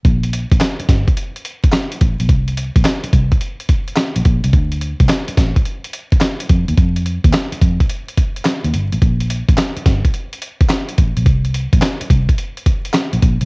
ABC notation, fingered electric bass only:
X:1
M:4/4
L:1/16
Q:"Swing 16ths" 1/4=107
K:Gdor
V:1 name="Fingered electric bass" clef=bass
B,,,3 A,,, z2 G,,, z6 z A,,, B,,, | C,,3 B,,, z2 C,, z6 B,,, B,,, C,, | D,,3 C,, z2 A,,, z6 z F,, _E,, | F,,3 _E,, z2 F,, z6 E,, G,,, A,,, |
B,,,3 A,,, z2 G,,, z6 z A,,, B,,, | C,,3 B,,, z2 C,, z6 B,,, B,,, C,, |]